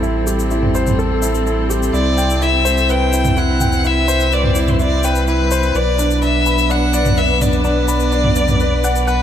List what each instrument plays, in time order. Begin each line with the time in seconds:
Already playing: sub bass A1, string section G3 C4 E4 A4, felt piano E4 G4 A4 C5
0.03 felt piano E4, shaker
0.27 felt piano G4, shaker
0.39 shaker
0.51 felt piano E4, shaker
0.63 mid tom
0.75 felt piano C5, shaker
0.87 mid tom, shaker
0.99 felt piano A4, shaker
1.22 felt piano E4, shaker
1.35 shaker
1.46 felt piano E4, shaker
1.70 felt piano G4, shaker
1.83 shaker
1.93 sub bass C2, felt piano E4, violin D5, shaker
2.18 felt piano G5, shaker
2.30 shaker
2.41 felt piano E4, violin E5, shaker
2.65 felt piano C5, shaker
2.78 shaker
2.89 felt piano B4, violin G5, shaker
3.13 felt piano E4, shaker
3.25 mid tom, shaker
3.37 felt piano E4, violin F#5, shaker
3.48 string section B4
3.60 felt piano G5, mid tom, shaker
3.73 shaker
3.84 felt piano E4, violin E5, shaker
4.08 felt piano C5, shaker
4.20 shaker
4.32 felt piano B4, violin D5, shaker
4.44 mid tom
4.55 felt piano E4, shaker
4.68 violin C5, mid tom, shaker
4.79 felt piano E4, violin D5, shaker
5.03 violin B4, felt piano G5, shaker
5.15 shaker
5.27 felt piano E4, violin B4, shaker
5.51 felt piano C5, shaker
5.63 shaker
5.74 sub bass B1, string section F#3, felt piano B4, violin D5, shaker
5.85 string section B3
5.99 felt piano D4, shaker
6.11 shaker
6.22 felt piano D4, violin E5, shaker
6.46 felt piano B5, shaker
6.58 shaker
6.70 felt piano D4, violin F#5, shaker
6.74 string section D4
6.93 felt piano D5, shaker
7.06 mid tom, shaker
7.17 felt piano B4, violin E5, shaker
7.41 felt piano D4, violin D5, mid tom, shaker
7.53 shaker
7.64 felt piano D4, violin D5, shaker
7.88 felt piano B5, shaker
8.00 shaker
8.12 felt piano D4, shaker
8.24 mid tom
8.36 felt piano D5, shaker
8.48 mid tom, shaker
8.60 felt piano B4, shaker
8.84 felt piano F#5, shaker
8.96 shaker
9.07 violin B4, felt piano F#5, shaker